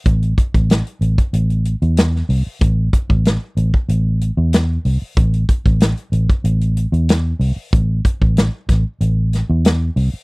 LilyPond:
<<
  \new Staff \with { instrumentName = "Fingered electric bass" } { \clef bass \time 4/4 \key a \minor \tempo 4 = 94 a,,8 r16 a,,8 r16 a,,16 r16 a,,8. e,8. c,16 r16 | a,,8 r16 a,,8 r16 a,,16 r16 a,,8. e,8. c,16 r16 | a,,8 r16 a,,8 r16 a,,16 r16 a,,8. e,8. c,16 r16 | a,,8 r16 a,,8 r16 a,,16 r16 a,,8. e,8. c,16 r16 | }
  \new DrumStaff \with { instrumentName = "Drums" } \drummode { \time 4/4 <hh bd>16 hh16 <hh bd>16 <hh bd>16 <hh sn>16 hh16 hh16 <hh bd>16 hh16 hh16 hh16 hh16 <hh sn>16 sn16 hho8 | <hh bd>8 <hh bd>16 bd16 <hh sn>8 hh16 bd16 hh8 hh8 <hh sn>8 hho8 | <hh bd>16 hh16 <hh bd>16 <hh bd>16 <hh sn>16 hh16 hh16 <hh bd>16 hh16 hh16 hh16 hh16 <hh sn>8 hho8 | <hh bd>8 <hh bd>16 bd16 <hh sn>8 <hh bd sn>8 hh8 <hh sn>8 <hh sn>8 hho8 | }
>>